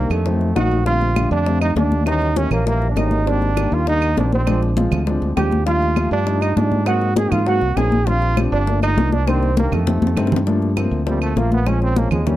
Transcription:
Already playing: grand piano D#3 G3 A#3 D4, trombone A#3, steel pan A#4
0.10 fingered electric bass F2, trombone A3, steel pan A4, high bongo, claves
0.26 grand piano D#3 F#3 A3 C4, high bongo, high conga
0.41 high bongo, high conga
0.55 fingered electric bass A#1, grand piano D#3 F#3 A3 D#4, trombone F#4, steel pan F#5, high bongo, low bongo, high conga, claves
0.71 high bongo, high conga
0.86 grand piano D3 G3 A3 C4, trombone F4, steel pan F5, high bongo, high conga
1.01 high bongo, high conga
1.15 grand piano D3 G3 A3 D4, high bongo, high conga, claves
1.31 fingered electric bass F2, trombone D4, steel pan D5, high conga
1.46 grand piano D3 G3 A3 C4, high bongo, high conga
1.61 trombone D#4, steel pan D#5, high bongo, high conga, claves
1.76 fingered electric bass D#2, grand piano D3 G3 A3 D4, trombone D4, steel pan D5, high bongo, low bongo, high conga
1.92 high bongo, high conga
2.06 grand piano E3 G3 A#3 C#4, trombone D#4, steel pan D#5, high bongo, high conga, claves
2.21 high bongo, high conga
2.36 grand piano E3 G3 A#3 C#4, trombone C#4, steel pan C#5, high bongo, high conga
2.51 fingered electric bass A#1, trombone A#3, steel pan A#4, high conga, low conga, claves
2.66 grand piano E3 G3 A#3 E4, trombone A#3, steel pan A#4, high bongo, high conga
2.81 high bongo, high conga
2.89 trombone D4, steel pan D5
2.96 fingered electric bass G#1, grand piano E3 G3 A#3 C#4, trombone D#4, steel pan D#5, high bongo, low bongo, high conga, claves
3.11 high bongo, high conga
3.26 grand piano D#3 G3 A#3 C4, trombone D4, steel pan D5, high bongo, high conga
3.41 high bongo, high conga
3.57 grand piano D#3 G3 A#3 D4, high bongo, high conga, claves
3.72 fingered electric bass D#2, trombone F4, steel pan F5, high conga
3.87 grand piano D#3 G3 A#3 D4, trombone D#4, steel pan D#5, high bongo, high conga
4.02 high bongo, high conga, claves
4.17 fingered electric bass A#1, grand piano D#3 G3 A#3 C4, trombone D4, steel pan D5, high bongo, low bongo, high conga
4.32 trombone C4, steel pan C5, high bongo, high conga
4.47 grand piano F3 G#3 C4 D4, high bongo, high conga, claves
4.62 high bongo, high conga
4.77 grand piano F3 G#3 C4 F4, high bongo, high conga
4.91 fingered electric bass D2, high conga, low conga, claves
5.07 grand piano F3 G#3 C4 D4, high bongo, high conga
5.22 fingered electric bass D2, high bongo, high conga
5.37 fingered electric bass D#2, grand piano F3 G#3 C4 D4, trombone G4, steel pan G5, high bongo, low bongo, high conga, claves
5.51 high bongo, high conga
5.66 grand piano F3 G3 A3 D4, trombone F4, steel pan F5, high bongo, high conga
5.82 high bongo, high conga
5.96 grand piano F3 G3 A3 F4, high bongo, high conga, claves
6.11 fingered electric bass G2, trombone D4, steel pan D5, high conga
6.26 grand piano F3 G3 A3 D#4, high bongo, high conga
6.41 trombone D#4, steel pan D#5, high bongo, high conga, claves
6.56 fingered electric bass G#2, grand piano F3 G3 A3 D4, trombone D4, steel pan D5, high bongo, low bongo, high conga
6.72 high bongo, high conga
6.86 grand piano F#3 A#3 C4 D#4, trombone F#4, steel pan F#5, high bongo, high conga, claves
7.01 high bongo, high conga
7.16 grand piano F#3 A#3 C4 D#4, trombone G#4, steel pan G#5, high bongo, high conga
7.32 fingered electric bass G#2, trombone F4, steel pan F5, high conga, low conga, claves
7.46 grand piano F#3 A#3 C4 F#4, trombone F#4, steel pan F#5, high bongo, high conga
7.61 fingered electric bass C2, high bongo, high conga
7.76 fingered electric bass A#1, grand piano F#3 A#3 C4 D#4, trombone G#4, steel pan G#5, high bongo, low bongo, high conga, claves
7.92 high bongo, high conga
8.07 grand piano F3 G3 C4 D4, trombone F4, steel pan F5, high bongo, high conga
8.22 high bongo, high conga
8.37 grand piano F3 G3 C4 D4, high bongo, high conga, claves
8.52 fingered electric bass G1, trombone D4, steel pan D5, high conga
8.67 grand piano F3 A3 A#3 D4, high bongo, high conga
8.82 trombone D#4, steel pan D#5, high bongo, high conga, claves
8.96 fingered electric bass C2, grand piano F3 A3 A#3 D4, high bongo, low bongo, high conga
9.12 trombone D4, steel pan D5, high bongo, high conga
9.27 grand piano D#3 G3 A#3 D4, trombone C4, steel pan C5, high bongo, high conga, claves
9.43 high bongo, high conga
9.56 grand piano D#3 G3 A#3 D4, trombone A#3, steel pan A#4, high bongo, high conga
9.72 fingered electric bass F2, trombone A3, steel pan A4, high conga, low conga, claves
9.87 grand piano D#3 G3 A3 C4, low bongo, high conga
10.02 fingered electric bass F2, high conga
10.07 low bongo
10.16 fingered electric bass G2, grand piano D#3 G3 A3 C4, low bongo, claves
10.27 low bongo
10.32 low conga
10.36 low bongo
10.47 grand piano F3 A3 A#3 D4, high bongo, high conga
10.62 high bongo, high conga
10.76 grand piano F3 A3 A#3 C4, high bongo, high conga, claves
10.91 fingered electric bass D2, high conga
11.06 grand piano F3 A3 A#3 C4, trombone G3, high bongo, high conga
11.22 trombone A3, high bongo, high conga, claves
11.36 fingered electric bass A#1, grand piano F3 A3 A#3 F4, trombone A#3, high bongo, low bongo, high conga
11.52 trombone B3, high bongo, high conga
11.66 grand piano F3 G#3 C4 C#4, trombone C#4, high bongo, high conga, claves
11.82 trombone C4, high bongo, high conga
11.96 grand piano F3 G#3 C4 C#4, trombone A#3, high bongo, high conga
12.11 fingered electric bass D#2, trombone G#3, high conga, low conga, claves
12.26 grand piano E3 G3 A#3 C#4, trombone G3, high bongo, high conga, low conga

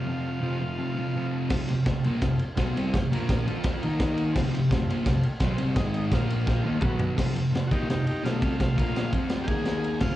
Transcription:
Already playing: transistor combo organ F4
0.04 distorted electric guitar F2 C3, transistor combo organ C4 F4
0.09 distorted electric guitar F3, transistor combo organ A4
0.40 distorted electric guitar F2 C3 F3, transistor combo organ C4 F4 C5
0.61 distorted electric guitar C3 F3
0.78 transistor combo organ C4 F4 A4
0.93 distorted electric guitar F3, transistor combo organ C4 F4 A4
0.99 distorted electric guitar C3
1.13 distorted electric guitar F2 C3, transistor combo organ C4 F4 A4
1.17 distorted electric guitar F3
1.49 distorted electric guitar F2 C3 F3, transistor combo organ C4 F4 A4, kick, snare, crash
1.68 distorted electric guitar F2 C3, transistor combo organ C4 F4 G4, ride
1.84 distorted electric guitar F2, transistor combo organ C4 F4 A4, kick, snare, ride
1.89 distorted electric guitar C3
2.04 distorted electric guitar A#2 F3 A#3, ride
2.21 distorted electric guitar F2 C3, transistor combo organ C4 F4 A4, kick, snare, ride
2.39 ride
2.55 distorted electric guitar B2 F#3 B3, transistor combo organ C4 F4 A4, kick, snare, ride
2.77 distorted electric guitar C3 G3 C4, ride
2.90 transistor combo organ C4 F4 G4, kick
2.95 distorted electric guitar F2 C3, snare, ride
3.11 distorted electric guitar A#2 F3 A#3, transistor combo organ A#3 F4 A#4, ride
3.29 kick, snare, ride
3.45 distorted electric guitar F3 C4, transistor combo organ C4 F4 A4, ride
3.50 distorted electric guitar F4
3.63 kick, snare, ride
3.82 distorted electric guitar D#3 A#3 D#4, transistor combo organ A#3 D#4 A#4, ride
4.00 kick, snare, ride
4.17 ride
4.32 distorted electric guitar F2, transistor combo organ C4 F4 A4, kick, snare, crash
4.37 distorted electric guitar C3 F3
4.51 distorted electric guitar F2 C3, transistor combo organ C4 F4 G4, ride
4.69 distorted electric guitar C3, transistor combo organ C4 F4 A4, kick, snare, ride
4.73 distorted electric guitar F2
4.90 distorted electric guitar A#2 F3 A#3, ride
5.04 distorted electric guitar F2, transistor combo organ C4 F4 A4, kick, snare, ride
5.08 distorted electric guitar C3
5.23 ride
5.40 distorted electric guitar B2 F#3 B3, transistor combo organ C4 F4 C5, kick, snare, ride
5.58 distorted electric guitar C3 G3 C4, ride
5.74 distorted electric guitar G#2 D#3 G#3, transistor combo organ D#4 G#4 D#5, kick, snare, ride
5.94 transistor combo organ D#4 G#4 D#5, ride
6.09 distorted electric guitar A#2 F3, transistor combo organ F4 A#4 F5, kick, snare, ride
6.13 distorted electric guitar A#3
6.30 ride
6.44 transistor combo organ F4 A#4 G5, kick
6.49 snare
6.62 distorted electric guitar D#3 A#3 D#4, transistor combo organ A4 C5 F5
6.81 distorted electric guitar B2 F#3 B3, transistor combo organ F#4 B4 F#5, kick, mid tom
7.00 floor tom
7.16 distorted electric guitar F2 C3 F3, transistor combo organ F4 A4 C5, kick, snare, crash
7.36 distorted electric guitar F2 C3, ride
7.50 distorted electric guitar F2 C3, transistor combo organ F4 A4 C5
7.55 snare, ride
7.67 distorted electric guitar A#2, transistor combo organ F#4
7.71 distorted electric guitar F3 A#3, transistor combo organ D#4 G4, kick, ride
7.88 distorted electric guitar F2 C3, transistor combo organ D#4 F4 G4 C5, snare, ride
7.92 transistor combo organ A4
8.07 transistor combo organ D#4 G4, ride
8.23 distorted electric guitar B2 F#3 B3, transistor combo organ A3 F4 A4 D5, snare, ride
8.39 distorted electric guitar C3 G3, transistor combo organ A3 F4, kick, ride
8.43 distorted electric guitar C4
8.58 distorted electric guitar F2 C3, transistor combo organ A3 F4 A4 C5, kick, snare, ride
8.76 distorted electric guitar A#2 F3 A#3, transistor combo organ A#3 F4 A#4, kick, ride
8.96 snare, ride
9.11 distorted electric guitar F3 C4 F4, transistor combo organ C4 F4 A4, kick, ride
9.29 snare, ride
9.44 distorted electric guitar D#3, transistor combo organ A#3 D#4 G4 G#4 A#4, kick, ride
9.49 distorted electric guitar A#3 D#4
9.65 snare, ride
9.84 ride
10.00 distorted electric guitar F2 C3 F3, transistor combo organ C4 F4 A4, kick, snare, crash

